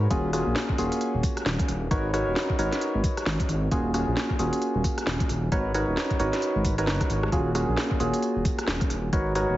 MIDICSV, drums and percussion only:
0, 0, Header, 1, 2, 480
1, 0, Start_track
1, 0, Key_signature, -6, "minor"
1, 0, Tempo, 451128
1, 113, Time_signature, 4, 2, 24, 8
1, 10185, End_track
2, 0, Start_track
2, 0, Title_t, "Drums"
2, 112, Note_on_c, 9, 36, 113
2, 113, Note_on_c, 9, 42, 60
2, 219, Note_off_c, 9, 36, 0
2, 219, Note_off_c, 9, 42, 0
2, 353, Note_on_c, 9, 37, 52
2, 353, Note_on_c, 9, 46, 103
2, 459, Note_off_c, 9, 37, 0
2, 459, Note_off_c, 9, 46, 0
2, 592, Note_on_c, 9, 38, 115
2, 699, Note_off_c, 9, 38, 0
2, 737, Note_on_c, 9, 36, 60
2, 833, Note_on_c, 9, 46, 84
2, 843, Note_off_c, 9, 36, 0
2, 940, Note_off_c, 9, 46, 0
2, 977, Note_on_c, 9, 42, 65
2, 1073, Note_off_c, 9, 42, 0
2, 1073, Note_on_c, 9, 42, 63
2, 1180, Note_off_c, 9, 42, 0
2, 1313, Note_on_c, 9, 36, 103
2, 1313, Note_on_c, 9, 46, 99
2, 1419, Note_off_c, 9, 36, 0
2, 1419, Note_off_c, 9, 46, 0
2, 1458, Note_on_c, 9, 37, 57
2, 1458, Note_on_c, 9, 42, 59
2, 1553, Note_on_c, 9, 38, 118
2, 1564, Note_off_c, 9, 37, 0
2, 1564, Note_off_c, 9, 42, 0
2, 1659, Note_off_c, 9, 38, 0
2, 1697, Note_on_c, 9, 36, 97
2, 1698, Note_on_c, 9, 42, 51
2, 1793, Note_on_c, 9, 37, 28
2, 1793, Note_on_c, 9, 46, 81
2, 1803, Note_off_c, 9, 36, 0
2, 1804, Note_off_c, 9, 42, 0
2, 1900, Note_off_c, 9, 37, 0
2, 1900, Note_off_c, 9, 46, 0
2, 2032, Note_on_c, 9, 36, 113
2, 2033, Note_on_c, 9, 42, 66
2, 2139, Note_off_c, 9, 36, 0
2, 2139, Note_off_c, 9, 42, 0
2, 2274, Note_on_c, 9, 37, 52
2, 2274, Note_on_c, 9, 46, 105
2, 2380, Note_off_c, 9, 37, 0
2, 2380, Note_off_c, 9, 46, 0
2, 2513, Note_on_c, 9, 38, 109
2, 2619, Note_off_c, 9, 38, 0
2, 2657, Note_on_c, 9, 36, 59
2, 2753, Note_on_c, 9, 46, 85
2, 2763, Note_off_c, 9, 36, 0
2, 2859, Note_off_c, 9, 46, 0
2, 2899, Note_on_c, 9, 38, 58
2, 2899, Note_on_c, 9, 42, 69
2, 2993, Note_off_c, 9, 42, 0
2, 2993, Note_on_c, 9, 42, 65
2, 3005, Note_off_c, 9, 38, 0
2, 3100, Note_off_c, 9, 42, 0
2, 3233, Note_on_c, 9, 36, 103
2, 3233, Note_on_c, 9, 46, 99
2, 3339, Note_off_c, 9, 36, 0
2, 3340, Note_off_c, 9, 46, 0
2, 3378, Note_on_c, 9, 37, 58
2, 3378, Note_on_c, 9, 42, 65
2, 3474, Note_on_c, 9, 38, 115
2, 3484, Note_off_c, 9, 37, 0
2, 3484, Note_off_c, 9, 42, 0
2, 3580, Note_off_c, 9, 38, 0
2, 3617, Note_on_c, 9, 36, 93
2, 3617, Note_on_c, 9, 42, 51
2, 3713, Note_on_c, 9, 37, 27
2, 3713, Note_on_c, 9, 46, 86
2, 3723, Note_off_c, 9, 36, 0
2, 3724, Note_off_c, 9, 42, 0
2, 3820, Note_off_c, 9, 37, 0
2, 3820, Note_off_c, 9, 46, 0
2, 3953, Note_on_c, 9, 36, 107
2, 3953, Note_on_c, 9, 42, 67
2, 4059, Note_off_c, 9, 36, 0
2, 4060, Note_off_c, 9, 42, 0
2, 4193, Note_on_c, 9, 37, 51
2, 4193, Note_on_c, 9, 46, 108
2, 4299, Note_off_c, 9, 37, 0
2, 4299, Note_off_c, 9, 46, 0
2, 4432, Note_on_c, 9, 38, 104
2, 4539, Note_off_c, 9, 38, 0
2, 4577, Note_on_c, 9, 36, 55
2, 4672, Note_on_c, 9, 46, 91
2, 4683, Note_off_c, 9, 36, 0
2, 4779, Note_off_c, 9, 46, 0
2, 4817, Note_on_c, 9, 42, 67
2, 4912, Note_off_c, 9, 42, 0
2, 4912, Note_on_c, 9, 42, 67
2, 5018, Note_off_c, 9, 42, 0
2, 5153, Note_on_c, 9, 36, 98
2, 5153, Note_on_c, 9, 46, 105
2, 5259, Note_off_c, 9, 36, 0
2, 5259, Note_off_c, 9, 46, 0
2, 5297, Note_on_c, 9, 37, 60
2, 5297, Note_on_c, 9, 42, 62
2, 5393, Note_on_c, 9, 38, 113
2, 5403, Note_off_c, 9, 37, 0
2, 5403, Note_off_c, 9, 42, 0
2, 5500, Note_off_c, 9, 38, 0
2, 5537, Note_on_c, 9, 36, 96
2, 5537, Note_on_c, 9, 42, 50
2, 5633, Note_on_c, 9, 37, 29
2, 5633, Note_on_c, 9, 46, 85
2, 5643, Note_off_c, 9, 36, 0
2, 5644, Note_off_c, 9, 42, 0
2, 5739, Note_off_c, 9, 37, 0
2, 5739, Note_off_c, 9, 46, 0
2, 5872, Note_on_c, 9, 36, 104
2, 5873, Note_on_c, 9, 42, 63
2, 5979, Note_off_c, 9, 36, 0
2, 5979, Note_off_c, 9, 42, 0
2, 6112, Note_on_c, 9, 37, 56
2, 6112, Note_on_c, 9, 46, 108
2, 6219, Note_off_c, 9, 37, 0
2, 6219, Note_off_c, 9, 46, 0
2, 6352, Note_on_c, 9, 38, 106
2, 6459, Note_off_c, 9, 38, 0
2, 6496, Note_on_c, 9, 42, 35
2, 6497, Note_on_c, 9, 36, 58
2, 6592, Note_on_c, 9, 46, 91
2, 6602, Note_off_c, 9, 42, 0
2, 6603, Note_off_c, 9, 36, 0
2, 6698, Note_off_c, 9, 46, 0
2, 6736, Note_on_c, 9, 38, 59
2, 6736, Note_on_c, 9, 42, 67
2, 6832, Note_off_c, 9, 42, 0
2, 6832, Note_on_c, 9, 42, 65
2, 6843, Note_off_c, 9, 38, 0
2, 6938, Note_off_c, 9, 42, 0
2, 7072, Note_on_c, 9, 36, 102
2, 7072, Note_on_c, 9, 46, 113
2, 7178, Note_off_c, 9, 46, 0
2, 7179, Note_off_c, 9, 36, 0
2, 7217, Note_on_c, 9, 37, 62
2, 7217, Note_on_c, 9, 42, 65
2, 7313, Note_off_c, 9, 37, 0
2, 7313, Note_on_c, 9, 37, 61
2, 7313, Note_on_c, 9, 38, 114
2, 7323, Note_off_c, 9, 42, 0
2, 7420, Note_off_c, 9, 37, 0
2, 7420, Note_off_c, 9, 38, 0
2, 7457, Note_on_c, 9, 36, 97
2, 7458, Note_on_c, 9, 37, 60
2, 7458, Note_on_c, 9, 42, 50
2, 7553, Note_on_c, 9, 46, 89
2, 7563, Note_off_c, 9, 36, 0
2, 7564, Note_off_c, 9, 37, 0
2, 7564, Note_off_c, 9, 42, 0
2, 7659, Note_off_c, 9, 46, 0
2, 7697, Note_on_c, 9, 37, 78
2, 7792, Note_on_c, 9, 36, 109
2, 7793, Note_on_c, 9, 42, 64
2, 7803, Note_off_c, 9, 37, 0
2, 7898, Note_off_c, 9, 36, 0
2, 7899, Note_off_c, 9, 42, 0
2, 8033, Note_on_c, 9, 37, 59
2, 8033, Note_on_c, 9, 46, 109
2, 8139, Note_off_c, 9, 37, 0
2, 8139, Note_off_c, 9, 46, 0
2, 8272, Note_on_c, 9, 38, 112
2, 8378, Note_off_c, 9, 38, 0
2, 8416, Note_on_c, 9, 36, 58
2, 8512, Note_on_c, 9, 46, 91
2, 8523, Note_off_c, 9, 36, 0
2, 8618, Note_off_c, 9, 46, 0
2, 8656, Note_on_c, 9, 42, 64
2, 8751, Note_off_c, 9, 42, 0
2, 8751, Note_on_c, 9, 42, 62
2, 8858, Note_off_c, 9, 42, 0
2, 8992, Note_on_c, 9, 36, 104
2, 8992, Note_on_c, 9, 46, 108
2, 9098, Note_off_c, 9, 36, 0
2, 9098, Note_off_c, 9, 46, 0
2, 9136, Note_on_c, 9, 37, 66
2, 9136, Note_on_c, 9, 42, 61
2, 9231, Note_on_c, 9, 38, 117
2, 9242, Note_off_c, 9, 37, 0
2, 9242, Note_off_c, 9, 42, 0
2, 9338, Note_off_c, 9, 38, 0
2, 9376, Note_on_c, 9, 36, 99
2, 9376, Note_on_c, 9, 42, 52
2, 9472, Note_on_c, 9, 37, 30
2, 9472, Note_on_c, 9, 46, 90
2, 9482, Note_off_c, 9, 42, 0
2, 9483, Note_off_c, 9, 36, 0
2, 9578, Note_off_c, 9, 37, 0
2, 9578, Note_off_c, 9, 46, 0
2, 9712, Note_on_c, 9, 36, 119
2, 9712, Note_on_c, 9, 42, 58
2, 9818, Note_off_c, 9, 36, 0
2, 9818, Note_off_c, 9, 42, 0
2, 9952, Note_on_c, 9, 37, 58
2, 9952, Note_on_c, 9, 46, 107
2, 10059, Note_off_c, 9, 37, 0
2, 10059, Note_off_c, 9, 46, 0
2, 10185, End_track
0, 0, End_of_file